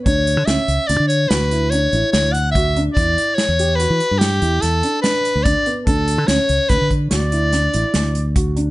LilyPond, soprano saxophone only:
\new Staff \with { instrumentName = "Soprano saxophone" } { \time 7/4 \key d \major \tempo 4 = 145 cis''4 e''4 d''8 cis''8 b'4 cis''4 cis''8 fis''8 e''8. r16 | d''4 cis''4 b'4 g'4 a'4 b'4 d''8. r16 | a'4 cis''4 b'8 r8 d''2. r4 | }